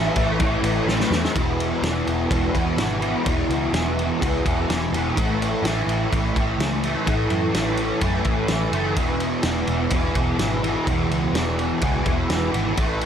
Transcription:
Already playing: E3 A3
0.16 A1, kick, ride
0.39 A1 A2 E3 A3, kick, ride
0.63 A1, ride
0.86 A1 A2 E3, snare
0.90 A3
1.00 snare
1.11 E2 E3 A3, snare
1.25 snare
1.34 E1 E2 B2 E3, kick, ride
1.60 ride
1.82 E1 E2 B2 E3, snare, ride
2.07 E1, ride
2.30 E1 E2 B2 E3, kick, ride
2.53 E1 B2 E3, kick, ride
2.77 G#1, snare, ride
2.99 B2 E3, ride
3.23 E1 E2 B2 E3, kick, ride
3.48 C#2, ride
3.72 E1 E2 B2 E3, snare, ride
3.99 ride
4.20 C#2 E2 B2 E3, kick, ride
4.45 E1 B2 E3, kick, ride
4.68 E1, snare, ride
4.92 E1 E3, ride
4.96 B2
5.16 A1 A2 E3 A3, kick, ride
5.42 ride
5.62 A1 A2 E3, snare, ride
5.67 A3
5.87 A1, ride
6.11 A1 A2 E3 A3, kick, ride
6.36 A1 E3 A3, kick, ride
6.58 C#2, snare, ride
6.83 E3 A3, ride
7.06 A1 A2 E3 A3, kick, ride
7.30 F#2, ride
7.54 A1 A2 E3 A3, snare, ride
7.77 ride
8.01 F#2 A2 E3 A3, kick, ride
8.24 A1 E3 A3, kick, ride
8.48 A1, snare, ride
8.71 F#1 E3 A3, ride
8.95 E1 E2 B2 E3, kick, ride
9.20 ride
9.43 E1 E2 B2 E3, snare, ride
9.67 E1, ride
9.90 E1 E2 B2 E3, kick, ride
10.15 E1 B2 E3, kick, ride
10.39 G#1, snare, ride
10.63 B2 E3, ride
10.87 E1 E2 B2 E3, kick, ride
11.10 C#2, ride
11.33 E1 E2 B2 E3, snare, ride
11.59 ride
11.81 C#2 E2 B2 E3, kick, ride
12.03 E1 B2 E3, kick, ride
12.30 E1, snare, ride
12.51 G#1 B2 E3, ride
12.75 A1 A2 E3 A3, kick, ride
13.01 ride

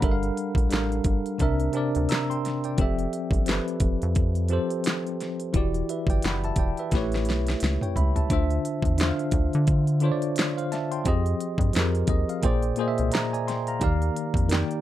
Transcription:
Already playing: F#5 B5
0.01 G1 G3 D4 A4 A#4, kick, closed hi-hat
0.05 E5
0.11 F5
0.23 closed hi-hat
0.37 closed hi-hat
0.55 A#1, kick, closed hi-hat
0.69 A1 G3 D4 A4 A#4, closed hi-hat
0.74 F5, snare, clap
0.92 closed hi-hat
1.04 G1, kick, closed hi-hat
1.26 closed hi-hat
1.38 C2 C3 C4 D4 A#4, kick, closed hi-hat
1.43 E5
1.60 closed hi-hat
1.73 C3 C4 D4 A#4, closed hi-hat
1.77 D5
1.95 D2, closed hi-hat
2.09 A#5 E6, snare, closed hi-hat
2.13 clap
2.30 G5 C6, closed hi-hat
2.45 snare, closed hi-hat
2.64 D5 G5, closed hi-hat
2.77 F1 F3 C4 G4 A4, kick, closed hi-hat
2.81 E5
2.99 closed hi-hat
3.13 closed hi-hat
3.31 G1, kick, closed hi-hat
3.46 F3 C4 G4 A4, snare, closed hi-hat
3.50 B4, clap
3.68 closed hi-hat
3.80 F1, kick, closed hi-hat
4.02 F2, closed hi-hat
4.15 kick, closed hi-hat
4.35 closed hi-hat
4.48 F3 C4 G4 A4, closed hi-hat
4.53 C5
4.70 closed hi-hat
4.84 snare, closed hi-hat
4.88 clap
5.07 closed hi-hat
5.21 snare, closed hi-hat
5.40 closed hi-hat
5.53 E1 E3 E4 F#4 G4, kick, closed hi-hat
5.57 D5
5.74 closed hi-hat
5.89 B4 E5, closed hi-hat
6.07 G1 D5 G5, kick, closed hi-hat
6.22 F#1 F#5 B5, snare, closed hi-hat
6.27 clap
6.44 E5 A5, closed hi-hat
6.56 E1 D5 G5, kick, closed hi-hat
6.77 B4 E5, closed hi-hat
6.91 A1 A3 E4 G4 B4, kick, snare, closed hi-hat
6.96 C#5
7.12 snare, closed hi-hat
7.25 B1, closed hi-hat
7.30 snare
7.47 snare, closed hi-hat
7.60 C#2, snare, closed hi-hat
7.81 C#5 G5, closed hi-hat, mid tom
7.96 C#2 E5 B5, closed hi-hat, floor tom
8.16 E5 A5, closed hi-hat, floor tom
8.29 D2 D3 D4 F4 C5, kick, closed hi-hat
8.33 E5
8.50 closed hi-hat
8.65 closed hi-hat
8.82 E2, kick, closed hi-hat
8.97 D3 D4 F4 C5, snare, closed hi-hat
9.02 E5, clap
9.08 F5
9.19 closed hi-hat
9.31 D2, kick, closed hi-hat
9.53 D3, closed hi-hat
9.67 kick, closed hi-hat
9.87 closed hi-hat
10.00 D3 D4 F4 C5, closed hi-hat
10.05 C#5
10.12 D5
10.22 closed hi-hat
10.36 snare, closed hi-hat
10.40 clap
10.57 C5 F5, closed hi-hat
10.72 E5 A5, snare, closed hi-hat
10.91 G5 C6, closed hi-hat
11.04 F2 F3 C4 G4 G#4, kick, closed hi-hat
11.08 D#5
11.26 closed hi-hat
11.41 closed hi-hat
11.58 G2, kick, closed hi-hat
11.73 F2 F3 C4 G4 G#4, snare, closed hi-hat
11.78 A#4, clap
11.95 closed hi-hat
12.07 D#2 D#5, kick, closed hi-hat
12.29 F5, closed hi-hat
12.42 A#1 A#2 A#3 G#4 C5 G5, kick, closed hi-hat
12.46 D5
12.62 closed hi-hat
12.76 A#2 A#3 G#4 G#5, closed hi-hat
12.80 C5 D#5
12.88 E5
12.98 C2, closed hi-hat
13.12 A#5, snare, closed hi-hat
13.16 clap
13.33 D5 G#5, closed hi-hat
13.48 G5 C6, snare, closed hi-hat
13.67 F5 A#5, closed hi-hat
13.80 D#2 D#3 A#3 G4 D5, kick, closed hi-hat
13.84 F5
14.02 closed hi-hat
14.16 closed hi-hat
14.34 F2, kick, closed hi-hat
14.49 D#3 A#3 G4 D5, snare, closed hi-hat
14.53 G5, clap
14.71 closed hi-hat

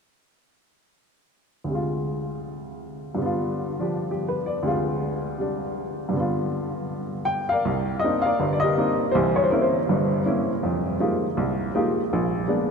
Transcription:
1.64 D2 C3
1.72 G#3 F4
3.15 G2 D3
3.22 B3 F4
3.79 F3 D4 G4
4.11 G4
4.28 B4
4.46 D5
4.63 D2 C3 G#3
4.67 F4
5.38 C3 G3 D4
6.09 G2
6.13 D3 B3
6.20 F4
7.25 G5
7.49 A#4 D5 F5
7.65 C2
7.99 D#5
8.04 A#3 C4 D4 D#4
8.22 D5 F5
8.26 A#4
8.40 G1 G2
8.53 D5
8.60 G4 D#5
8.65 A#4
8.78 A#3 C4 D4 D#4
9.12 C2 E3 E4 G4 C5
9.36 C#5
9.43 C5
9.50 A#3 C4 C#4 E4 A#4
9.62 C5
9.89 G1 G2
10.26 A#3 C4 C#4 E4
10.63 F2
11.00 G#3 A#3 D#4 F4 G4
11.37 C2
11.75 G#3 A#3 D#4 F4 G4
12.13 A#1
12.48 G#3 A#3 B3 D4

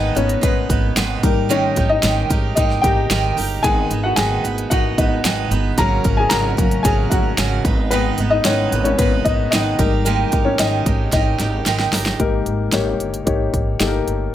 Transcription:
Already playing: G#1 G#2 D#3 G#3 B3 D#4 B4 D#5
0.15 G#1 G#3 B3 C#4 D#4 B4 C#5, closed hi-hat
0.29 closed hi-hat
0.41 G#1 G#3 B3 D#4 B4, kick, closed hi-hat
0.69 G#1 G#3 B3 D#4 B4, kick, closed hi-hat
0.96 G#1 G#2 D#3 G#3 B3 D#4 B4, snare, closed hi-hat
1.23 G#1 D#3 G3 G#3 A#3 D#4 G4 A#4, kick, closed hi-hat
1.49 G#2 D#3 G#3 C#4 D#4 G4 A#4 C#5, closed hi-hat
1.76 G#1 G#3 D#4 G4 A#4, kick, closed hi-hat
1.89 D#4 D#5
2.02 G#1 G#2 D#3 G#3 D#4 G4 A#4, snare, closed hi-hat
2.30 G#1 G#3 D#4 G4 A#4, kick, closed hi-hat
2.55 G#1 G#3 D#4 G4 A#4 D#5, kick, closed hi-hat
2.70 snare
2.82 G#1 D#4 G4 A#4 G5, kick, closed hi-hat
2.86 G#3
3.10 G#1 G#2 D#3 G#3 D#4 G4 A#4, snare, closed hi-hat
3.37 G1 G#3 D#4 G4 A#4, open hi-hat
3.63 G#1 G#2 D#3 G#3 B3 D#4 G#4 B4 G#5, kick, closed hi-hat
3.90 G#1 G#3 B3 D#4 B4, closed hi-hat
4.03 F#4 F#5
4.16 G#1 G#2 D#3 G#3 B3 D#4 G#4 B4 G#5, snare, closed hi-hat
4.44 G#1 G#3 B3 D#4 B4, closed hi-hat
4.58 closed hi-hat
4.70 G#1 G#3 B3 D#4 F#4 B4 F#5, kick, closed hi-hat
4.98 G#1 G#3 B3 D#4 B4 D#5, kick, closed hi-hat
5.25 G#1 G#2 D#3 G#3 B3 D#4 B4, snare, closed hi-hat
5.51 G1 G#3 B3 D#4 B4, closed hi-hat
5.78 G#1 G#2 C#3 F#3 A#3 C#4 F#4 A#4 A#5, kick, closed hi-hat
6.04 G#1 F#3 C#4 F#4 A#4, kick, closed hi-hat
6.17 G#4 G#5
6.29 G#1 G#2 C#3 F#3 C#4 F#4 A#4 A#5, snare, closed hi-hat
6.57 G#1 C#3 F#3 A#3 C#4 F#4 A#4, kick, closed hi-hat
6.71 closed hi-hat
6.83 G#1 F#3 C#4 F#4 G#4 G#5, kick, closed hi-hat
6.87 A#4
7.10 G#1 F#3 C#4 F#4 A#4 F#5, kick, closed hi-hat
7.38 G#1 G#2 C#3 F#3 C#4 F#4 A#4, snare, closed hi-hat
7.65 G#1 G#3 B3 D#4 B4, kick, closed hi-hat
7.91 G#2 D#3 G#3 B3 D#4 B4, closed hi-hat
8.18 G#1 G#3 B3 D#4 B4, closed hi-hat
8.30 D#4 D#5
8.45 G#1 G#2 D#3 G#3 B3 C#4 D#4 B4 C#5, snare, closed hi-hat
8.72 G#1 G#3 B3 D#4 B4, closed hi-hat
8.84 C#4 C#5, closed hi-hat
8.98 G#1 G#3 B3 D#4 B4, kick, closed hi-hat
9.25 G#1 B3 D#4 B4 D#5, kick, closed hi-hat
9.29 G#3
9.51 G#1 G#2 D#3 G#3 B3 D#4 D#5, snare, closed hi-hat
9.55 D#4 B4
9.78 G#1 D#3 G3 G#3 A#3 D#4 G4 A#4, kick, closed hi-hat
10.05 G#2 D#3 G#3 A#3 D#4 G4 A#4, closed hi-hat
10.32 G#1 G#3 D#4 G4 A#4, kick, closed hi-hat
10.45 C#4 C#5
10.59 G#1 G#2 D#3 G#3 D#4 G4 A#4 D#5, snare, closed hi-hat
10.86 G#1 G#3 D#4 G4 A#4, kick, closed hi-hat
11.12 G#1 G#3 D#4 G4 A#4 D#5, kick, snare, closed hi-hat
11.39 G#1 G#3 D#4 G4 A#4, snare, closed hi-hat
11.66 G#1 G#2 D#3 G#3 D#4 G4 A#4, snare, closed hi-hat
11.80 snare
11.93 G1 G#3 D#4 G4 A#4, snare, open hi-hat
12.06 snare
12.19 G#1 G#2 A#3 D#4 G4 A#4, kick, closed hi-hat
12.46 G#1, closed hi-hat
12.72 G#1 A#3 D#4 G4 C#5, snare, closed hi-hat
13.00 G1, closed hi-hat
13.14 closed hi-hat
13.25 G#1 A#3 D#4 G4 C#5, kick, closed hi-hat
13.54 G#1, kick, closed hi-hat
13.79 G1 A#3 D#4 G4 A4, snare, closed hi-hat
13.87 A#4
14.07 G1, closed hi-hat

